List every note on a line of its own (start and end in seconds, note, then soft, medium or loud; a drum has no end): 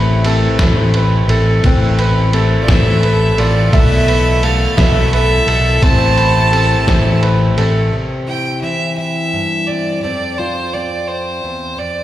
0.00 0.47 A1 loud
0.00 1.61 A1 medium
0.00 0.25 A2 medium
0.00 1.60 A2 medium
0.00 3.69 C3 medium
0.00 0.61 E3 loud
0.00 0.24 A3 medium
0.00 0.37 A3 medium
0.00 3.69 A3 medium
0.00 0.24 C4 medium
0.00 0.37 C4 medium
0.00 0.26 E4 loud
0.00 0.37 E4 medium
0.00 0.27 B4 medium
0.00 0.37 B4 medium
0.00 0.94 B4 medium
0.00 0.37 E5 loud
0.24 0.59 A3 medium
0.24 0.59 C4 medium
0.24 0.59 E4 medium
0.24 1.28 A4 medium
0.24 0.58 B4 medium
0.24 ride medium
0.59 1.21 A1 medium
0.59 1.30 A2 medium
0.59 1.63 E3 medium
0.59 1.31 A3 medium
0.59 1.42 A3 medium
0.59 1.29 C4 medium
0.59 1.42 C4 medium
0.59 1.29 E4 medium
0.59 1.42 E4 medium
0.59 1.28 B4 medium
0.59 1.42 B4 medium
0.59 1.42 E5 medium
0.59 kick medium
0.59 snare loud
0.59 ride medium
0.94 1.97 B4 medium
0.94 ride medium
1.28 1.59 A1 medium
1.28 1.63 A3 soft
1.28 1.64 C4 soft
1.28 1.64 E4 medium
1.28 2.32 A4 medium
1.28 1.64 B4 medium
1.28 ride medium
1.63 2.56 A1 loud
1.63 3.70 A1 medium
1.63 2.33 A2 medium
1.63 3.70 A2 medium
1.63 2.69 E3 medium
1.63 2.32 A3 medium
1.63 2.46 A3 medium
1.63 2.33 C4 medium
1.63 2.46 C4 medium
1.63 2.34 E4 loud
1.63 2.46 E4 medium
1.63 2.46 B4 loud
1.63 2.35 B4 medium
1.63 2.46 G5 loud
1.63 kick loud
1.63 ride medium
1.99 3.02 B4 medium
1.99 ride medium
2.32 2.68 A3 medium
2.32 2.68 C4 medium
2.32 2.67 E4 medium
2.32 3.36 A4 medium
2.32 2.67 B4 medium
2.32 ride medium
2.62 2.72 F4 medium
2.62 2.71 D5 medium
2.68 3.30 A1 loud
2.68 3.39 A2 medium
2.68 3.72 E3 medium
2.68 3.50 A3 medium
2.68 3.39 A3 medium
2.68 3.38 C4 medium
2.68 3.51 C4 medium
2.68 3.38 E4 medium
2.68 3.51 E4 medium
2.68 3.41 A4 medium
2.68 3.37 B4 medium
2.68 3.51 B4 medium
2.68 3.40 E5 medium
2.68 3.51 E5 medium
2.68 kick medium
2.68 snare loud
2.68 ride medium
3.03 3.73 B4 medium
3.03 ride medium
3.37 3.69 A1 medium
3.37 3.72 A3 soft
3.37 3.73 C4 medium
3.37 3.73 E4 medium
3.37 3.66 F4 medium
3.37 3.73 A4 medium
3.37 3.73 B4 medium
3.37 3.66 D5 medium
3.37 ride medium
3.66 3.75 F4 medium
3.66 3.76 D5 medium
3.72 4.65 B1 medium
3.72 5.79 B1 medium
3.72 5.81 A2 medium
3.72 4.42 B2 medium
3.72 5.81 B2 medium
3.72 5.79 B2 medium
3.72 4.78 E3 medium
3.72 5.81 E3 medium
3.72 4.42 A3 medium
3.72 4.55 A3 medium
3.72 4.55 B3 medium
3.72 4.78 E4 medium
3.72 4.55 E4 medium
3.72 4.44 A4 medium
3.72 4.56 B4 medium
3.72 4.45 B4 medium
3.72 4.76 E5 medium
3.72 4.45 E5 loud
3.72 4.56 E5 medium
3.72 kick loud
3.72 ride medium
4.08 5.11 B4 medium
4.08 ride medium
4.42 4.77 A3 medium
4.42 5.46 A4 medium
4.42 4.78 A4 medium
4.42 4.76 A4 medium
4.42 4.76 B4 medium
4.42 4.81 F5 medium
4.42 ride medium
4.77 5.39 B1 loud
4.77 5.48 B2 medium
4.77 5.81 E3 medium
4.77 5.48 A3 medium
4.77 5.60 A3 medium
4.77 5.60 B3 medium
4.77 5.48 E4 medium
4.77 5.60 E4 medium
4.77 5.46 A4 medium
4.77 5.13 A4 medium
4.77 5.45 B4 medium
4.77 5.60 B4 medium
4.77 5.82 E5 loud
4.77 5.60 E5 medium
4.77 5.13 E5 medium
4.77 kick medium
4.77 snare loud
4.77 ride medium
5.13 5.84 A4 medium
5.13 5.83 B4 medium
5.13 5.84 E5 loud
5.13 ride medium
5.46 5.78 B1 medium
5.46 5.81 A3 soft
5.46 5.82 E4 medium
5.46 5.82 A4 medium
5.46 5.82 B4 medium
5.46 ride medium
5.81 6.74 A1 loud
5.81 7.88 A1 medium
5.81 6.52 A2 medium
5.81 7.88 A2 medium
5.81 7.90 C3 medium
5.81 6.52 E3 medium
5.81 7.90 E3 medium
5.81 6.49 A3 medium
5.81 6.64 A3 medium
5.81 7.90 A3 medium
5.81 6.64 C4 medium
5.81 6.50 C4 medium
5.81 6.64 E4 medium
5.81 6.52 E4 medium
5.81 6.64 C5 medium
5.81 7.22 C5 loud
5.81 6.65 E5 medium
5.81 7.23 A5 loud
5.81 kick loud
5.81 ride loud
6.16 7.57 B5 medium
6.16 ride medium
6.51 6.87 A3 medium
6.51 6.87 C4 medium
6.51 6.86 E4 medium
6.51 7.56 A4 medium
6.51 ride medium
6.87 7.49 A1 loud
6.87 7.58 A2 medium
6.87 7.58 E3 medium
6.87 7.69 A3 medium
6.87 7.58 A3 medium
6.87 7.69 C4 medium
6.87 7.58 C4 medium
6.87 7.56 E4 medium
6.87 7.70 E4 medium
6.87 7.70 C5 medium
6.87 7.70 E5 medium
6.87 kick medium
6.87 snare loud
6.87 ride medium
7.22 7.92 B4 medium
7.22 ride medium
7.56 7.89 A1 medium
7.56 7.94 A3 soft
7.56 7.93 C4 soft
7.56 7.92 E4 medium
7.56 7.92 A4 medium
7.56 7.92 B4 medium
7.56 ride medium
7.92 8.62 C3 medium
7.92 8.62 C4 soft
8.27 8.97 E4 medium
8.27 8.60 G5 medium
8.61 9.98 E3 medium
8.61 9.68 C4 soft
8.61 8.94 E5 medium
8.98 10.03 E4 soft
8.98 9.69 E5 medium
9.33 9.99 G2 soft
9.67 9.99 C4 soft
9.67 10.02 D5 medium
10.02 11.43 F2 medium
10.02 10.73 C4 medium
10.02 10.40 D5 medium
10.38 12.04 F4 medium
10.38 10.75 C5 medium
10.74 12.04 C4 medium
10.74 11.09 D5 medium
11.07 11.80 C5 medium
11.44 11.78 E2 soft
11.78 12.04 F2 soft
11.78 12.04 D5 medium